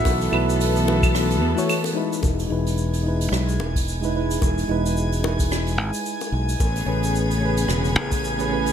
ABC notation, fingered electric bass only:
X:1
M:4/4
L:1/8
Q:"Swing 16ths" 1/4=110
K:E
V:1 name="Fingered electric bass" clef=bass
B,,, B,,,4 E,, z2 | E,,, E,,,3 B,,, E,,,3 | E,,, E,,,4 G,,, z B,,, | A,,, A,,,3 E,,, A,,,3 |]